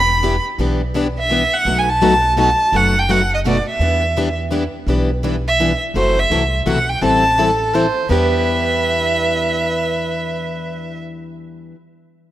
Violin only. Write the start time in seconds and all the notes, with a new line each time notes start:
Already playing: B5
1.19 E5
1.54 F#5
1.79 G#5
1.89 A5
2.39 A5
2.76 F#5
2.99 G5
3.11 F#5
3.35 D#5
3.48 D5
3.69 E5
5.48 E5
5.97 C5
6.19 E5
6.68 F#5
6.90 G5
7.04 A5
8.10 E5